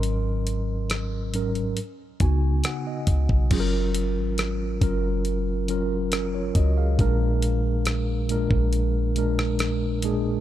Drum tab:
CC |----------------|x---------------|----------------|
HH |x-x-x-xxx-x-x-x-|x-x-x-x-x-x-x-x-|x-x-x-x-x-x-x-x-|
SD |----r-------r---|----r-------r---|----r------rr---|
BD |----------o---oo|o-----o-------o-|o------o--------|